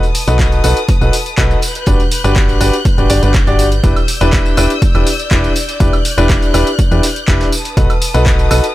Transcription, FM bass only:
0.28 0.62 B1 loud
0.64 0.74 B1 loud
1.01 1.11 B1 medium
1.38 1.55 B1 medium
1.87 1.97 G1 medium
2.24 2.58 G1 medium
2.61 2.71 G1 medium
2.98 3.08 G1 loud
3.10 3.20 G1 loud
3.23 3.45 G1 medium
3.47 3.81 G1 medium
3.84 3.94 E1 medium
4.21 4.55 E1 loud
4.57 4.68 E1 medium
4.95 5.04 E1 medium
5.31 5.49 E1 loud
5.80 5.91 E1 medium
6.18 6.52 E1 medium
6.54 6.64 E1 medium
6.91 7.01 E2 medium
7.28 7.45 E1 loud
7.77 7.87 B1 medium
8.15 8.49 B1 medium
8.51 8.61 B1 medium

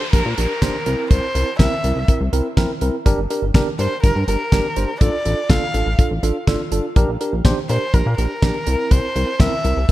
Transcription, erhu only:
0.00 0.12 C5 medium
0.14 0.36 A#4 medium
0.38 1.07 A#4 medium
1.11 1.56 C5 medium
1.60 2.05 E5 loud
3.79 4.02 C5 medium
4.03 4.26 A#4 medium
4.28 4.97 A#4 medium
5.01 5.51 D5 loud
5.50 5.99 F5 loud
7.70 7.95 C5 medium
7.94 8.17 A#4 medium
8.18 8.92 A#4 medium
8.91 9.41 C5 medium
9.40 9.89 E5 medium

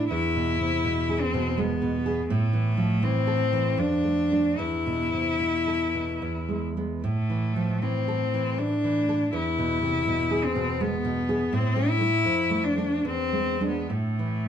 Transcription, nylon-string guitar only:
0.00 0.10 E4 soft
0.11 2.26 E2 soft
0.36 0.60 B2 soft
0.60 0.84 C3 soft
0.85 1.24 B2 soft
1.09 1.48 G#4 soft
1.34 1.73 B2 soft
1.58 1.97 G#3 soft
1.82 2.21 B2 soft
2.06 2.30 G#4 soft
2.30 3.74 A2 medium
2.53 2.77 E3 soft
2.77 3.02 F3 soft
3.03 3.42 E3 soft
3.27 3.68 A4 soft
3.53 3.78 E3 soft
3.78 4.56 F2 medium
4.04 4.30 A3 soft
4.31 4.56 A3 soft
4.31 4.56 D4 soft
4.59 6.18 E2 soft
4.86 5.13 B2 soft
5.13 5.39 C3 soft
5.40 5.84 B2 soft
5.67 6.11 A4 soft
5.94 6.22 B2 soft
6.22 7.02 E2 soft
6.49 6.76 G#3 soft
6.77 7.01 G#3 soft
6.77 7.02 B3 soft
7.04 9.29 A2 soft
7.30 7.56 E3 soft
7.56 7.82 F3 soft
7.82 8.23 E3 soft
8.08 8.49 A4 soft
8.34 8.74 E3 soft
8.58 8.99 A3 soft
8.84 9.24 E3 soft
9.09 9.34 A4 soft
9.33 11.48 E2 medium
9.58 9.82 B2 soft
9.82 10.07 C3 soft
10.07 10.46 B2 soft
10.31 10.70 G#4 soft
10.55 10.94 B2 soft
10.81 11.19 G#3 soft
11.05 11.43 B2 soft
11.29 11.53 G#4 soft
11.53 12.23 A2 medium
11.76 11.99 A3 soft
12.01 12.23 A3 soft
12.01 12.23 E4 soft
12.25 13.02 F2 soft
12.50 12.77 A3 soft
12.78 13.02 A3 soft
12.78 13.02 D4 soft
13.05 13.87 E2 soft
13.32 13.60 G#3 soft
13.61 13.87 G#3 soft
13.61 13.87 D4 soft
13.90 14.48 A2 soft
14.19 14.47 E3 soft

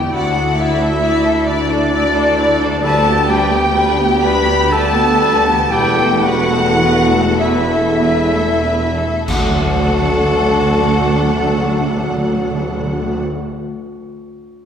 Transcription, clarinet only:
0.00 0.14 G4 medium
0.15 0.61 F#4 loud
0.60 1.50 E4 loud
1.49 2.85 D4 loud
2.83 3.31 A4 loud
3.30 3.95 G4 loud
4.23 4.68 B4 loud
4.72 5.70 A4 loud
5.73 6.27 G4 loud
6.26 7.41 F#4 loud
7.40 9.29 E4 loud
9.30 13.22 F#4 medium

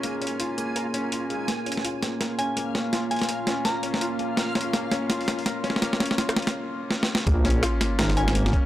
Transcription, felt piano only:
0.00 0.04 A#3 loud
0.00 0.21 A#3 loud
0.00 0.21 C#4 loud
0.00 0.40 F4 loud
0.00 0.76 A#4 medium
0.21 0.38 C#4 loud
0.40 0.56 F4 loud
0.58 0.74 A#3 medium
0.76 0.93 A#4 medium
0.94 1.11 C#4 medium
1.12 1.24 F4 medium
1.30 1.47 G#3 medium
1.48 1.66 A#3 loud
1.66 1.83 C#4 loud
1.84 2.01 F4 loud
2.02 2.19 A#3 medium
2.20 2.38 A#4 medium
2.38 2.55 C#4 loud
2.57 2.74 A#3 loud
2.75 2.91 C#4 loud
2.93 3.09 F4 loud
3.11 3.27 A#3 medium
3.29 3.46 A#4 medium
3.47 3.64 C#4 loud
3.65 3.82 A#3 loud
3.83 4.00 C#4 loud
4.01 4.18 F4 loud
4.19 4.36 A#3 medium
4.37 4.55 A#4 medium
4.55 4.72 C#4 loud
4.73 4.91 A#3 loud
4.91 5.08 C#4 loud
5.10 5.26 F4 loud
5.28 5.44 A#3 medium
5.46 5.63 A#4 medium
5.64 5.80 C#4 loud
5.82 5.99 A#3 loud
6.00 6.17 C#4 loud
6.18 6.35 F4 loud
6.36 6.53 A#3 medium
7.27 7.44 A#3 loud
7.45 7.61 C#4 loud
7.63 7.79 F4 loud
7.81 7.97 A#3 medium
7.99 8.16 A#4 medium
8.17 8.34 C#4 loud
8.35 8.52 A#3 loud
8.53 8.66 C#4 loud

